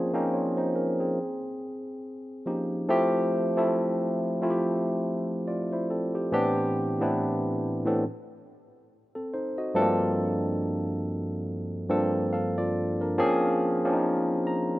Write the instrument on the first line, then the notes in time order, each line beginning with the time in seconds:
tine electric piano
Already playing: F3 A#3 C4 C#4 F4 G#4 D5
0.13 F3 A#3 C4 C#4 D#4
0.33 F4 C#5
0.57 D#4 C5
0.76 C#4 A#4
1.00 C4 G#4
2.46 F3 A#3 C#4 D#4 G4
2.89 F3 A3 C4 E4 G4
3.57 F3 A3 C4 E4 A4
4.42 F3 A3 C4 E4 F4
4.50 G4
5.47 F4 D5
5.73 E4 C5
5.90 C4 A4
6.15 G4
6.32 A2 E3 B3 C4 D4 G4
7.00 A2 E3 B3 C4 D4 E4
7.85 A2 E3 B3 C4 D4 A4
9.15 C4 A4
9.34 D#4 C5
9.58 F#4 D#5
9.74 G2 F3 A3 C4 D4 A4
9.82 A#3
11.89 G2 F3 A#3 C4 D4 A4
12.33 A4 F5
12.58 F4 D5
13.01 D4 A#4
13.18 F3 A#3 C4 C#4 G#4
13.85 F3 A#3 C4 C#4 D4
13.93 D#4
14.47 A#5